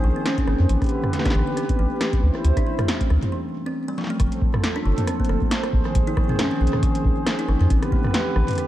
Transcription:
Already playing: D#3 G#4 C5
0.04 A#1 F3
0.16 C4
0.26 C#4, cross-stick, snare, closed hi-hat
0.38 C4, kick, closed hi-hat
0.47 G#1 A#3, cross-stick
0.60 F2
0.69 A1 D3 E3 G4 B4, closed hi-hat
0.82 kick, cross-stick, closed hi-hat
0.84 closed hi-hat
0.86 closed hi-hat
0.89 closed hi-hat
1.04 cross-stick, mid tom
1.13 snare, closed hi-hat
1.19 snare
1.25 D4, kick, cross-stick, snare, closed hi-hat
1.30 cross-stick, snare
1.35 A1 E3
1.39 cross-stick
1.47 B3
1.57 C4, cross-stick, closed hi-hat
1.69 B3, kick, closed hi-hat
1.79 A1 A3
2.01 E3, cross-stick, snare, closed hi-hat
2.13 kick, closed hi-hat
2.23 D2 E4 C5
2.35 cross-stick
2.45 D2, closed hi-hat
2.57 D4, kick, cross-stick, closed hi-hat
2.67 E3
2.79 A3, cross-stick, closed hi-hat, mid tom
2.88 C4, snare, closed hi-hat
3.01 A3, kick, closed hi-hat
3.10 D2 G3, cross-stick
3.23 closed hi-hat, mid tom
3.32 E3
3.66 C4
3.88 G3
3.98 F3, snare
4.01 snare
4.04 snare
4.07 A3, snare
4.20 G1 F3 A4 C5, kick, cross-stick, closed hi-hat
4.32 closed hi-hat
4.42 kick
4.54 cross-stick, mid tom
4.64 snare, closed hi-hat
4.76 D4, cross-stick
4.86 G1 F3
4.98 A#3, closed hi-hat, mid tom
5.07 C4, cross-stick, closed hi-hat
5.20 A#3, kick
5.25 closed hi-hat
5.29 G1 A3, cross-stick
5.42 kick
5.51 F3, snare, closed hi-hat
5.63 cross-stick, closed hi-hat
5.73 A#1 D#3 G#4, kick
5.85 cross-stick
5.95 A#1, kick, closed hi-hat
6.07 D#4, closed hi-hat
6.17 F3, kick, cross-stick
6.29 C4, mid tom
6.32 mid tom
6.36 cross-stick, snare, closed hi-hat, mid tom
6.39 C#4, mid tom
6.43 mid tom
6.46 mid tom
6.51 C4
6.61 A#1 A#3
6.67 closed hi-hat
6.73 cross-stick, mid tom
6.75 mid tom
6.80 F3, kick, closed hi-hat, mid tom
6.95 closed hi-hat
7.05 A#1, kick
7.26 cross-stick, snare, closed hi-hat
7.39 D#4, closed hi-hat
7.48 G#1 F3, cross-stick
7.61 F2 C4
7.70 A1 D3 C4 G4 B4, kick, closed hi-hat
7.83 B3, cross-stick, closed hi-hat
7.92 A3, kick
8.04 cross-stick, mid tom
8.07 cross-stick
8.11 E3, cross-stick, snare, closed hi-hat
8.36 A1, cross-stick
8.48 closed hi-hat, mid tom
8.51 closed hi-hat
8.53 closed hi-hat
8.55 cross-stick, closed hi-hat
8.58 closed hi-hat

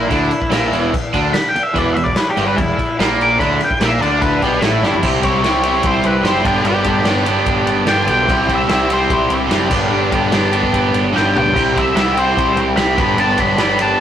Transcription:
0.08 D2 D3 D4 E4, kick, crash
0.31 muted overdriven electric guitar stroke, muted picked electric bass stroke, crash
0.42 kick
0.50 A#1 A#2 A#3, snare, crash
0.72 E1 E2 E3, crash
0.93 muted picked electric bass stroke, muted overdriven electric guitar stroke, kick, crash
1.13 D2 D3 D4, kick, crash
1.33 B5, muted overdriven electric guitar stroke, muted picked electric bass stroke, snare, crash
1.49 G5
1.55 muted picked electric bass stroke, muted overdriven electric guitar stroke, crash
1.63 E5
1.73 E1 E2 E3 E4 G#4 B4, kick, crash
1.78 D5
1.94 E1 E2 E4 G#4 B4 E5, crash
2.04 D5, kick
2.12 E4 G#4 C#5, snare, crash
2.17 B4
2.30 G4
2.37 G1 G2 G3, crash
2.47 B4
2.56 E1 E2 E4 G#4 D5, kick, crash
2.78 muted overdriven electric guitar stroke, muted picked electric bass stroke, kick, crash
2.99 A#1 A#2 A#3 E4 G#4 B5, snare, crash
3.21 D6, crash
3.38 D2 D3 D4 E4 G#4 C#5 B5, kick, crash
3.57 E4 G#4 B4, muted picked electric bass stroke, crash
3.61 G5, muted overdriven electric guitar stroke
3.71 kick
3.77 A#1 E4 G#4 D5, crash
3.81 A#2 A#3, snare
3.86 E5
4.00 D2 D3 D4 D5, crash
4.18 E4 G#4 B4, crash
4.22 kick
4.42 B1 B2 B3 G4, kick, crash
4.60 A1 A2 A3 E4 G#4 C#5, snare, crash
4.81 G1 G2 G3, snare
4.86 E4
4.94 floor tom
5.00 C2 C3 G3 C4 E4 G4 C5, kick, crash
5.05 E4 G4
5.21 C2 E4 G4 C5 C#5, kick, ride
5.26 C4
5.42 C2 G3 C4 E4 G4 C6, snare, ride
5.63 E4 G4, ride
5.67 C4
5.83 C2 E4 G4 C5, kick, ride
6.04 C2 B4, ride
6.22 F#1 C3 G3 C4 E4 G4, snare, ride
6.26 E4 G4 B4 C5
6.43 G1 D3 G3 B3 D4 G4 B4, kick, ride
6.47 G2
6.62 G1 G2 D3, ride
6.67 G3 B3 D4 G4
6.83 G1 B3 D4 G4 D5, kick, ride
6.88 G3
7.02 G1 G3 B3 D4 G4, snare, ride
7.06 D4 G4 C#5
7.17 snare
7.25 G3 B3 D4 G4, ride
7.44 G1 D4 G4 A4, kick, ride
7.65 G1, ride
7.85 G1 G2 D3 G3 B3 D4 G4 D5 G5, snare, ride
7.89 D4 G4
8.07 B1 G3 B3 D4 G4, ride
8.12 G5
8.20 E4 G4 C5
8.28 C2 C3 G3 C4 E4, kick, ride
8.32 G4
8.46 C2 E4 G4 C5, kick, ride
8.52 C4 E5
8.68 C2 G3 C4 E4 G4 C5 E5, snare, ride
8.90 C4 E4 G4 C5, ride
9.10 C2 E4 G4 B4, kick, ride
9.30 C2, ride
9.47 F#1 C3 G3 C4 E4
9.51 E4 G4 D5, snare, ride
9.69 G1 G2 D3 G3 B3 D4 G4, kick, crash
9.73 B4
9.90 G1 G2 D3 G3 B3 D4 G4
10.11 G1 G3 B3 D4 G4 B4, kick, ride
10.31 G1 G3 B3 D4 G4 A4, snare, ride
10.43 snare
10.52 G3 B3 D4 G4, ride
10.63 kick
10.71 G1 D4 G4 B4, kick, ride
10.93 G1, ride
11.12 G2 D3 G3 B3 D4 G4 B4, snare
11.16 G1 G5
11.33 C#2 B3 D4 G4, mid tom
11.38 G3 G5
11.46 floor tom
11.53 C2 C3 G3 C4 E4 G4 C5, kick, crash
11.69 E4 G4 C5
11.75 C2 C4 E4, kick, ride
11.79 E5
11.93 C2 G3 C4 E4 G4 D5 E5, snare, ride
12.14 C4 E4 G4, ride
12.19 C5
12.34 C2 E4 G4 C5, kick
12.38 ride
12.56 C2, ride
12.76 C2 C3 G3 C4 E4 G4 D5 B5, snare, ride
12.96 G1 D3 G3 B3 D4 G4 B4, kick, ride
13.00 G2 B5
13.16 G1 G2 D3 G3 B3 A5, ride
13.20 D4 G4
13.37 G1 D4 G4 A4 B5, kick, ride
13.41 G3 B3
13.56 G1 G3 D4 G4 B4 B5, snare, ride
13.60 B3 D4 G4
13.69 snare
13.79 B3 D4 G4 A5, ride
13.83 G3

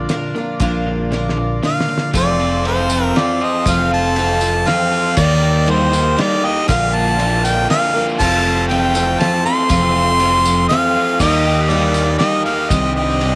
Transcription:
Already playing: F3 D4 F4 A#4 D5
0.09 A#2 D3 A#3 D4 F4 A#4, snare, closed hi-hat
0.35 A#2 D3 A#3 D4 F4 A#4
0.60 A#1 A#2 D3 F3 A#3 D4 F4 A#4, kick, closed hi-hat
0.87 A#2 D3
1.11 A#2 D3 A#3 D4 F4 A#4, snare
1.29 snare
1.37 A#2 D3
1.63 A#2 D3 A#3 D4 F4 A#4 F5, snare
1.81 snare
1.89 A#2 D3
1.98 snare
2.14 F1 F2 F3 C4 F4 A4 C5 D5, kick, ride, tambourine
2.40 F4
2.64 F3 C4 F4 A4 C5, ride
2.90 F3, tambourine
3.04 A#4
3.15 F3 C4 F4 A4 D5, snare, ride
3.41 F4 D#5
3.66 F1 F2 F3 C4 F4 A4, kick, ride, tambourine
3.70 F5
3.91 F4 A5
4.16 F3 C4 F4 A4, ride
4.41 F3, tambourine
4.65 F3 C4 F4 A4 F5, snare, ride
4.92 F4
5.17 D#2 D#3 G3 A#3 D#4 G4 A#4 D5, kick, crash, tambourine
5.43 G4
5.66 G3 A#3 D#4 A#4 C5, ride
5.92 D#3 A#3 D#4 A#4, tambourine
6.17 G3 A#3 D#4 A#4, snare, ride
6.21 D5
6.43 G4 D#5
6.68 A#1 A#2 D3 F3 A#3 D4 F4 A#4 F5, kick, ride, tambourine
6.94 F4 A5
7.07 tambourine
7.19 F3 A#3 D4 A#4, ride
7.44 D3 G5, tambourine
7.69 F3 A#3 D4 A#4 F5, snare, ride
7.84 tambourine
7.94 F3 A#3 D4 F4 A#4
8.09 tambourine
8.19 F1 F2 F3 A3 C4 F4 A4 A5, kick, tambourine, crash
8.45 F4
8.68 F3 C4 F4 G5, ride
8.73 A4
8.94 F3 C4 F4 A4, tambourine
9.18 F3 C4 F4 A4 A5, snare, ride
9.45 C4 F4 A4 C6
9.69 F1 F2 F3 C4 F4 A4, kick, ride, tambourine
9.96 F4
10.19 F3 C4 F4 A4, ride
10.45 F3, tambourine
10.69 F3 C4 F4 A4 F5, snare, ride
10.96 F4
11.19 D#2 D#3 G3 A#3 D#4 G4 A#4 D#5, kick, tambourine, crash
11.46 G4
11.69 G3 A#3 D#4 G4 D5, ride
11.94 D#3, tambourine
12.18 G3 A#3 D#4 G4 D#5, snare, ride
12.45 A#3 D#4 G4 F5
12.69 C2 C3 D#3 G3 C4 D4 G4 C5 D#5, kick, ride, tambourine
12.84 tambourine
12.95 G4 D#5
13.10 tambourine
13.20 G3 C4 D4 G4, ride, tambourine

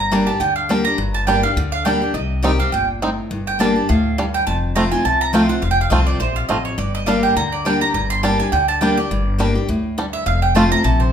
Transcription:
Already playing: G1 G2 A#5
0.12 G3 A#3 D4 G4
0.27 D4 G4 A5
0.40 D2 D3 G5
0.56 F5
0.69 G3 A#3 D4 G4
0.85 D4 G4 A#5
0.98 G1 G2
1.14 A5
1.27 G3 A#3 D4 G4 G5
1.43 D4 G4 F5
1.56 D2 D3
1.72 F5
1.85 G3 A#3 D4 G4 G5
2.02 D4 G4
2.14 C2 C3 D#5
2.43 D#3 G3 C4 D#4 G4
2.59 C4 G4 F5
2.72 G1 A#2 G5
3.02 A2 G3 C4 D#4
3.31 G1 G2
3.47 G5
3.59 G3 A#3 D4 G4 A5
3.76 D4 G4
3.89 D2 A2 F5
4.18 G2 G3 D4
4.34 G5
4.47 F1 F2 A5
4.75 F3 A3 C4 F4 A#5
4.92 C4 F4 G#5
5.05 C2 C3 A5
5.21 A#5
5.33 F3 A3 C4 F4 G5
5.49 C4 F4 F#5
5.62 F1 F2 F5
5.71 G5
5.81 F5
5.90 C2 F3 A3 C4 F4 D#5
6.07 D5
6.20 A#1 C3 C5
6.36 F4
6.49 A1 F2 A3 C4 F4 D#5
6.65 C#5
6.78 G1 G2 D5
6.95 D#5
7.06 G3 A#3 D4 G4 F5
7.23 G5
7.36 D2 D3 A#5
7.52 D5
7.65 G3 A#3 D4 G4 G5
7.81 D4 G4 A#5
7.94 G1 G2 A#5
8.10 C6
8.23 G3 A#3 D4 G4 A5
8.40 D4 G4 G#5
8.52 D2 D3 G5
8.68 A5
8.81 G3 A#3 D4 G4 G5
8.97 G4 D5
9.11 G1 G2
9.38 G3 A#3 D4 G4
9.55 D4 G4
9.68 D2 A2
9.98 G2 G3 D4
10.13 E5
10.26 F1 F2 F5
10.42 G5
10.55 F3 A3 C4 F4 A5
10.72 C4 F4 A#5
10.84 A#1 C3 A5
11.00 C5

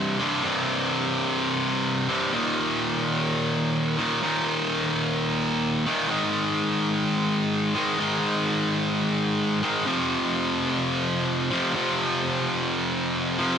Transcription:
Already playing: C2 G2 C3
0.19 C2 G2 C3
0.43 C2 G2 C3
2.08 C2 G2 C3
2.32 D#2 A#2 D#3
3.98 D#2 A#2 D#3
4.22 D#2 A#2 D#3
5.86 D#2 A#2 D#3
6.09 G#2 D#3 G#3
7.74 G#2 D#3 G#3
7.98 G#2 D#3 G#3
9.63 G#2 D#3 G#3
9.85 F2 C3 F3
11.51 F2 C3 F3
11.74 F2 C3 F3
13.39 F2 C3 F3

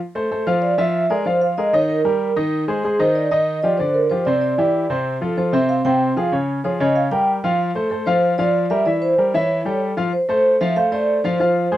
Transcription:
0.15 A3 A4 C5
0.31 A3 A4 C5
0.47 F3 F4 C5 F5
0.62 D5
0.78 F3 F4 E5
1.10 G#3 G#4 A#4 D5
1.25 F3 F4 C5 F5
1.41 F5
1.58 G#3 G#4 A#4 D#5
1.73 D#3 D#4 C#5 D#5
1.89 A#4
2.05 G3 G4 A#4
2.36 D#3 D#4 D#5
2.68 G#3 G#4 C5
2.83 G#3 G#4 C5
2.99 D#3 D#4 C5 D#5
3.15 D5
3.31 D#3 D#4 D#5
3.63 F3 F4 G4 D5
3.78 D3 D4 C5 D5
3.94 A#4
4.10 F3 F4 G4 C5
4.25 C3 C4 C5 D5
4.41 D5
4.58 E3 E4 G4
4.90 C3 C4 C5
5.21 F3 F4 A4
5.37 F3 F4 A4 C5
5.53 C3 C4 C5 E5
5.69 F5
5.85 C3 C4 C5 G5
6.16 F3 F4 G#4 F5
6.32 C#3 C#4 C#5
6.64 F3 F4 G#4 C#5
6.80 C#3 C#4 C#5 D#5
6.96 F5
7.11 G3 G4 A#4 G5
7.44 F3 F4 F5
7.75 A3 A4 C5
7.90 A3 A4 C5
8.06 F3 F4 C5 F5
8.38 F3 F4 D5 F5
8.70 G3 G4 A#4 E5
8.86 E3 E4 D5 E5
9.02 C5
9.18 G3 G4 A#4
9.34 E3 E4 C#5 E5
9.65 G3 G4 A4
9.97 F3 F4 F5
10.13 C5
10.29 A3 A4 C5
10.61 F3 F4 E5 F5
10.76 A3 A4 C5 F5
10.92 A3 A4 C5 D5
11.24 F3 F4 C5 F5
11.40 F3 F4 C5 F5
11.72 G#3 G#4 C5

